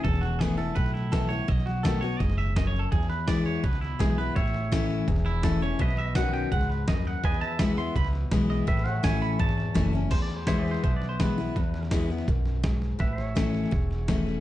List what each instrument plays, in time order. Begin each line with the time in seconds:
0.04 upright bass E1, steel-string acoustic guitar E2, clean electric guitar A4, kick, snare
0.13 snare
0.21 clean electric guitar F#4, snare
0.39 steel-string acoustic guitar E3 A3 B3 E4, clean electric guitar G#4, kick, snare, hi-hat pedal
0.57 steel-string acoustic guitar B3 E4, clean electric guitar A4, snare
0.75 upright bass B1, steel-string acoustic guitar A2, clean electric guitar B4, kick, snare
0.86 snare
0.94 clean electric guitar E4, snare
1.12 steel-string acoustic guitar E3 A3 B3 E4, clean electric guitar A4, kick, snare, hi-hat pedal
1.29 steel-string acoustic guitar B3 E4, clean electric guitar C#5, snare
1.48 upright bass B1, steel-string acoustic guitar B2, clean electric guitar D#5, kick, snare
1.58 snare
1.66 clean electric guitar F#4, snare
1.83 steel-string acoustic guitar D#3 A3 B3 F#4, clean electric guitar A4, kick, snare, hi-hat pedal
2.01 steel-string acoustic guitar B3 F#4, clean electric guitar C#5, snare
2.19 upright bass F#1, steel-string acoustic guitar G#2, clean electric guitar D#5, kick, snare
2.30 snare
2.38 clean electric guitar E5, snare
2.56 steel-string acoustic guitar F#2, clean electric guitar D#5, kick, snare, hi-hat pedal
2.67 clean electric guitar C#5
2.74 snare
2.79 clean electric guitar A4
2.92 upright bass E2, steel-string acoustic guitar E2, clean electric guitar G#4, kick, snare
3.01 snare
3.09 clean electric guitar B4, snare
3.28 steel-string acoustic guitar E3 G#3 B3 E4, clean electric guitar D5, kick, snare, hi-hat pedal
3.46 clean electric guitar C#5, snare
3.63 upright bass C#2, steel-string acoustic guitar B2, clean electric guitar B4, kick, snare
3.73 snare
3.81 clean electric guitar E4, snare
3.99 upright bass B1, steel-string acoustic guitar E3 G#3 B3 E4, clean electric guitar G#4, kick, snare, hi-hat pedal
4.18 steel-string acoustic guitar B3 E4, clean electric guitar B4, snare
4.36 upright bass A1, steel-string acoustic guitar A2, pedal steel guitar C#5 E5, clean electric guitar C#5, kick, snare
4.46 snare
4.54 snare
4.72 steel-string acoustic guitar E3 A3 C#4 E4, kick, snare, hi-hat pedal
4.90 snare
5.08 upright bass E1, steel-string acoustic guitar E2, kick, snare
5.16 snare
5.25 clean electric guitar E4, snare
5.43 steel-string acoustic guitar E3 A3 C#4 E4, clean electric guitar A4, kick, snare, hi-hat pedal
5.61 steel-string acoustic guitar C#4 E4, clean electric guitar C#5, snare
5.79 upright bass B1, steel-string acoustic guitar B2, pedal steel guitar B4 E5, clean electric guitar D#5, kick, snare
5.88 snare
5.97 clean electric guitar E5, snare
6.02 pedal steel guitar D#5
6.15 steel-string acoustic guitar B2 D#3 C#4 F#4, clean electric guitar F#5, kick, snare, hi-hat pedal
6.33 clean electric guitar G5, snare
6.52 upright bass C#2, steel-string acoustic guitar G#2, clean electric guitar F#5, kick, snare
6.61 snare
6.70 clean electric guitar B4, snare
6.88 upright bass D#2, steel-string acoustic guitar F#2, clean electric guitar D#5, kick, snare, hi-hat pedal
7.05 clean electric guitar F#5, snare
7.24 steel-string acoustic guitar E2, upright bass E2, pedal steel guitar B4 D#5, clean electric guitar G#5, kick, snare
7.32 snare
7.41 clean electric guitar A5, snare
7.46 pedal steel guitar E5
7.59 steel-string acoustic guitar E3 G#3 B3 E4, clean electric guitar B5, kick, snare, hi-hat pedal
7.77 steel-string acoustic guitar B3 E4, clean electric guitar C6, snare
7.95 upright bass C#2, steel-string acoustic guitar B2, clean electric guitar B5, kick, snare
8.05 snare
8.13 snare
8.31 upright bass B1, steel-string acoustic guitar E3 G#3 B3 E4, kick, snare, hi-hat pedal
8.50 clean electric guitar D#5, snare
8.67 upright bass A1, steel-string acoustic guitar A2, pedal steel guitar B4 E5, clean electric guitar E5, kick, snare
8.77 snare
8.86 clean electric guitar F#5, snare
8.93 pedal steel guitar C#5
9.03 upright bass A1, steel-string acoustic guitar E3 A3 C#4 E4, clean electric guitar G#5, kick, snare, hi-hat pedal
9.22 clean electric guitar B5, snare
9.39 upright bass G#1, steel-string acoustic guitar E2, clean electric guitar A5, kick, snare
9.49 snare
9.58 snare
9.74 upright bass F#1, steel-string acoustic guitar E3 A3 C#4 E4, kick, snare, hi-hat pedal
9.93 steel-string acoustic guitar C#4 E4, snare
10.11 steel-string acoustic guitar E2, upright bass E2, clean electric guitar C5, kick, snare, crash
10.22 clean electric guitar D5
10.29 snare
10.36 clean electric guitar C5
10.47 steel-string acoustic guitar E3 G#3 B3 E4, clean electric guitar C5, pedal steel guitar C#5 E5, kick, snare, hi-hat pedal
10.58 clean electric guitar D5
10.66 snare
10.71 pedal steel guitar B4, clean electric guitar C5, snare
10.83 upright bass B1, steel-string acoustic guitar B2, clean electric guitar C5, kick, snare
10.96 clean electric guitar D5
11.02 snare
11.09 clean electric guitar C5
11.20 steel-string acoustic guitar E3 G#3 B3 E4, clean electric guitar B4, kick, snare, hi-hat pedal
11.38 steel-string acoustic guitar B3 E4, snare
11.56 upright bass E2, steel-string acoustic guitar E2, kick, snare
11.74 snare
11.83 snare
11.91 steel-string acoustic guitar E3 G#3 B3 E4, kick, snare, hi-hat pedal
12.10 steel-string acoustic guitar B3 E4, snare
12.18 snare
12.28 upright bass B1, steel-string acoustic guitar F#2, kick, snare
12.46 snare
12.63 steel-string acoustic guitar G#2, kick, snare, hi-hat pedal
12.82 snare
12.99 upright bass A1, steel-string acoustic guitar A2, pedal steel guitar B4 E5, kick, snare
13.18 snare
13.25 pedal steel guitar C#5
13.35 steel-string acoustic guitar E3 A3 C#4 E4, kick, snare, hi-hat pedal
13.54 snare
13.64 snare
13.71 upright bass E1, steel-string acoustic guitar E2, kick, snare
13.91 snare
14.08 steel-string acoustic guitar E3 A3 C#4 E4, kick, snare, hi-hat pedal
14.27 snare